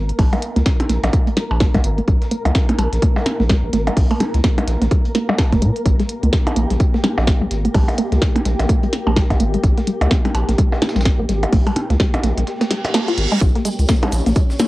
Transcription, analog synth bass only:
0.00 0.12 G#1 medium
0.19 0.28 A#1 loud
0.56 0.62 C#2 medium
0.90 0.98 A#1 medium
1.04 1.10 A#1 medium
1.51 1.64 A#1 medium
1.74 1.81 A#1 medium
1.84 2.01 G#1 medium
2.08 2.17 A#1 loud
2.45 2.51 C#2 medium
2.78 2.87 A#1 loud
2.93 2.99 A#1 medium
3.40 3.53 A#1 medium
3.63 3.70 A#1 medium
3.73 3.90 G#1 medium
3.97 4.06 A#1 loud
4.34 4.40 C#2 medium
4.67 4.76 A#1 medium
4.81 4.88 A#1 medium
5.52 5.63 F1 loud
5.62 5.71 A#2 medium
5.86 5.95 A#1 loud
6.23 6.29 C#2 medium
6.56 6.65 A#1 loud
6.71 6.77 A#1 medium
7.18 7.31 A#1 medium
7.41 7.47 A#1 medium
7.51 7.68 G#1 medium
7.75 7.84 A#1 loud
8.12 8.18 C#2 medium
8.46 8.54 A#1 medium
8.60 8.66 A#1 medium
9.07 9.20 A#1 medium
9.30 9.36 A#1 medium
9.40 9.57 G#1 medium
9.64 9.72 A#1 loud
10.01 10.07 C#2 medium
10.34 10.43 A#1 loud
10.48 10.55 A#1 medium
10.96 11.09 A#1 medium
11.19 11.25 A#1 medium
11.29 11.46 G#1 medium
11.53 11.61 A#1 loud
11.90 11.96 C#2 medium
12.23 12.32 A#1 medium
12.37 12.44 A#1 medium
13.18 13.27 G#1 medium
13.41 13.50 A#1 loud
13.79 13.85 C#2 medium
14.12 14.21 A#1 medium
14.26 14.33 A#1 medium

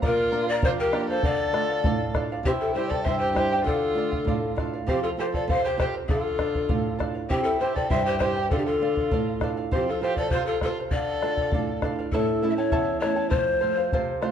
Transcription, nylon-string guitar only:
0.03 0.61 A#2 medium
0.31 0.81 A#3 soft
0.31 0.80 D4 soft
0.31 0.81 F4 medium
0.62 1.21 F2 medium
0.92 1.17 A#3 medium
0.92 1.17 D4 soft
0.92 1.18 F4 medium
1.24 1.83 D3 medium
1.53 2.02 A3 medium
1.53 2.02 D4 soft
1.53 2.02 F4 medium
1.84 2.43 A2 medium
2.14 2.38 A3 soft
2.14 2.40 D4 soft
2.14 2.39 F4 medium
2.43 3.03 C3 medium
2.75 3.24 G3 soft
2.75 3.24 C4 soft
2.75 3.24 E4 soft
3.05 3.64 G2 medium
3.33 3.59 G3 soft
3.33 3.59 C4 soft
3.33 3.59 E4 medium
3.64 4.24 D3 medium
3.94 4.44 A3 soft
3.94 4.44 D4 soft
3.94 4.44 F4 medium
4.25 4.85 A2 medium
4.55 4.80 A3 soft
4.55 4.81 D4 soft
4.55 4.81 F4 medium
4.87 5.46 F3 medium
5.17 5.66 C4 soft
5.17 5.66 F4 soft
5.17 5.66 A4 medium
5.48 6.07 C3 medium
5.77 6.02 C4 medium
5.77 6.02 F4 soft
5.77 6.02 A4 medium
6.08 6.67 D3 medium
6.38 6.87 D4 soft
6.38 6.87 F4 soft
6.38 6.87 A4 soft
6.69 7.28 A2 medium
6.99 7.23 D4 soft
6.99 7.24 F4 soft
6.99 7.24 A4 soft
7.30 7.89 C3 medium
7.60 8.09 C4 soft
7.60 8.09 E4 soft
7.60 8.09 G4 medium
7.90 8.49 G2 medium
8.21 8.45 C4 soft
8.21 8.45 E4 soft
8.21 8.45 G4 medium
8.51 9.10 D3 medium
8.81 9.30 D4 soft
8.81 9.30 F4 soft
8.81 9.30 A4 soft
9.11 9.70 A2 medium
9.40 9.65 D4 soft
9.40 9.65 F4 soft
9.40 9.66 A4 medium
9.71 10.30 F3 medium
10.01 10.50 C4 soft
10.01 10.50 F4 soft
10.01 10.50 A4 soft
10.30 10.89 C3 medium
10.62 10.86 C4 soft
10.62 10.86 F4 soft
10.62 10.87 A4 medium
10.92 11.51 D3 medium
11.23 11.71 D4 soft
11.23 11.71 F4 soft
11.23 11.71 A4 soft
11.52 12.10 A2 medium
11.82 12.06 D4 soft
11.82 12.06 F4 soft
11.82 12.07 A4 medium
12.13 12.71 A2 medium
12.43 12.91 A3 soft
12.43 12.91 C#4 soft
12.43 12.92 E4 medium
12.73 13.31 E2 medium
13.03 13.27 A3 medium
13.03 13.27 C#4 soft
13.03 13.28 E4 medium
13.33 13.91 F2 medium
13.62 14.11 A3 soft
13.62 14.11 C4 soft
13.62 14.11 F4 medium
13.93 14.31 C3 medium
14.22 14.31 A3 medium
14.22 14.31 C4 soft
14.22 14.31 F4 medium

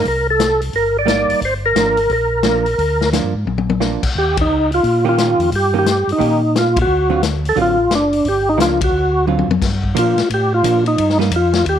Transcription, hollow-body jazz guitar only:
1.06 1.41 G3 medium
1.06 1.41 A#3 medium
1.06 1.41 D#4 medium
1.76 1.96 F3 soft
1.76 1.96 A#3 soft
1.76 1.96 D4 medium
2.45 2.64 F3 medium
2.45 2.65 A#3 medium
2.45 2.65 D4 medium
3.13 3.32 F3 soft
3.13 3.33 A#3 soft
3.13 3.33 D4 medium
3.80 4.00 F3 soft
3.80 4.00 A#3 medium
3.80 4.01 D4 medium
5.05 5.49 D#3 medium
5.05 5.49 A#3 medium
5.05 5.49 C#4 medium
5.05 5.49 G4 medium
5.74 5.85 D#3 medium
5.74 5.85 A#3 medium
5.74 5.85 C#4 medium
5.74 5.85 G4 medium
6.18 6.39 D#3 soft
6.18 6.39 A#3 medium
6.18 6.40 C#4 soft
6.18 6.40 G4 medium
7.10 7.21 D3 medium
7.10 7.21 F#3 medium
7.10 7.21 C4 medium
7.10 7.22 F4 medium
7.56 7.76 D3 medium
7.56 7.76 F#3 medium
7.56 7.76 C4 medium
7.56 7.76 F4 medium
8.58 8.78 F3 medium
8.58 8.78 A#3 medium
8.58 8.78 D4 medium
9.27 9.47 D3 medium
9.27 9.47 F#3 medium
9.27 9.47 C4 soft
9.27 9.47 F4 medium
9.95 10.14 F3 medium
9.95 10.15 A#3 medium
9.95 10.15 D4 medium
10.63 10.83 F3 soft
10.63 10.83 A#3 soft
10.63 10.84 D4 medium
11.19 11.30 G3 medium
11.19 11.30 A#3 medium
11.19 11.30 D#4 medium

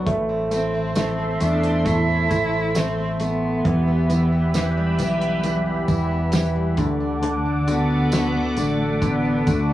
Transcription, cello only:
0.53 1.44 C4 medium
1.42 1.88 D4 medium
1.87 2.78 E4 loud
2.77 3.23 C4 medium
3.22 5.00 B3 medium
7.70 8.60 B3 medium
8.59 9.05 A3 medium
9.03 9.50 B3 medium
9.48 9.73 A3 loud

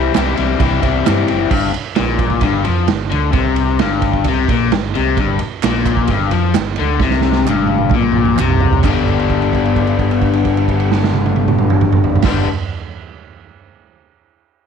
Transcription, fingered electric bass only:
0.16 0.30 C2 medium
0.39 0.53 C2 medium
0.60 0.75 C2 loud
0.83 0.98 C2 medium
1.08 1.22 G2 medium
1.30 1.45 F#1 medium
1.51 1.73 G1 medium
1.77 muted fingered electric bass stroke soft
1.99 2.41 A#1 medium
2.42 2.64 G1 loud
2.68 2.88 F2 loud
2.90 3.11 G1 medium
3.12 3.33 D2 medium
3.33 3.76 C2 medium
3.82 4.24 G1 loud
4.25 4.47 C2 loud
4.49 4.70 A#1 loud
4.74 4.94 G1 medium
4.97 5.17 C2 medium
5.18 5.39 G1 loud
5.42 muted fingered electric bass stroke soft
5.63 6.06 A#1 medium
6.09 6.30 G1 loud
6.33 6.54 F2 loud
6.56 6.77 G1 medium
6.79 6.99 D2 medium
7.00 7.43 C2 loud
7.49 7.90 G1 medium
7.91 8.34 A#1 loud
8.39 8.82 C2 loud
8.84 12.16 G1 loud
12.24 12.44 G1 medium

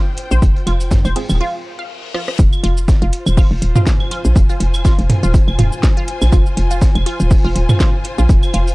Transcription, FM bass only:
0.31 0.40 A#1 medium
0.42 0.54 F1 loud
0.67 1.01 F1 medium
1.05 1.14 F1 loud
1.30 1.41 D#1 loud
2.39 2.50 F1 loud
2.63 2.98 F1 medium
3.02 3.11 F1 loud
3.26 3.46 D#1 loud
3.51 3.60 F1 loud
3.62 3.73 D#1 medium
4.25 4.34 A#1 medium
4.36 4.47 F1 loud
4.60 4.95 F1 medium
4.99 5.08 F1 loud
5.23 5.43 D#1 loud
5.48 5.57 F1 medium
5.59 5.70 D#1 medium
6.22 6.31 A#1 medium
6.32 6.44 F1 loud
6.57 6.92 F1 medium
6.95 7.04 F1 loud
7.20 7.40 D#1 loud
7.45 7.54 F1 medium
7.56 7.67 D#1 medium
8.18 8.27 A#1 medium
8.29 8.40 F1 loud
8.54 8.75 F1 medium

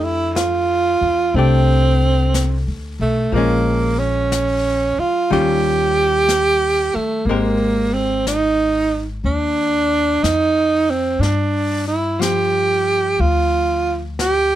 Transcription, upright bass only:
0.00 0.98 F2 medium
1.01 1.32 E2 medium
1.34 2.62 C2 medium
2.68 2.98 D2 soft
2.99 3.30 B1 medium
3.32 4.93 A#1 medium
4.98 muted upright bass stroke soft
5.32 6.91 D#2 medium
6.95 muted upright bass stroke soft
7.25 9.19 G#1 medium
9.24 10.19 D#2 medium
10.23 11.18 F2 medium
11.19 13.14 G2 medium
13.19 14.55 D2 medium

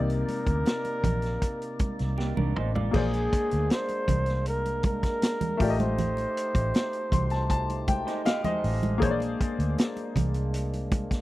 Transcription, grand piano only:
0.00 2.88 C3 medium
0.00 2.90 A#3 medium
0.00 2.91 D#4 soft
0.00 2.92 D5 medium
2.91 5.55 A#3 medium
2.91 5.56 G#4 medium
2.96 5.57 C5 medium
2.96 5.58 D5 medium
5.57 8.59 A3 medium
5.57 8.59 F4 medium
5.61 8.61 G4 medium
5.61 5.68 D5 medium
5.70 8.43 D#5 medium
7.12 7.30 C6 medium
7.31 7.49 A5 medium
7.50 7.86 A5 medium
7.88 8.23 G5 medium
8.26 8.44 F5 medium
8.45 8.98 D#5 medium
8.98 11.21 A#3 medium
8.98 11.21 G#4 medium
9.02 11.21 C5 medium
9.02 9.09 C#5 medium
9.11 11.21 D5 medium

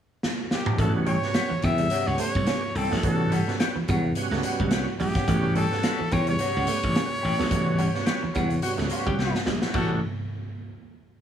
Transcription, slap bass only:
0.79 1.16 A1 medium
1.51 muted slap bass stroke medium
1.64 1.87 E2 medium
2.07 2.18 C#2 medium
2.36 2.46 C2 medium
2.75 2.89 C2 medium
2.92 3.04 A#1 medium
3.04 3.41 A1 loud
3.76 muted slap bass stroke soft
3.89 4.12 E2 medium
4.31 4.42 C#2 medium
4.60 4.73 C#2 medium
4.73 4.85 C2 loud
5.00 5.13 A#1 medium
5.28 5.65 A1 loud
6.00 muted slap bass stroke soft
6.13 6.36 E2 medium
6.57 6.66 C#2 loud
6.84 6.94 A1 medium
7.24 7.37 A1 medium
7.40 7.52 A#1 medium
7.52 7.88 A1 loud
8.23 muted slap bass stroke medium
8.36 8.59 E2 medium
8.79 8.89 C#2 medium
9.07 9.17 C#2 medium
9.19 9.32 C2 loud
9.46 9.59 A#1 loud
9.74 10.00 A1 loud

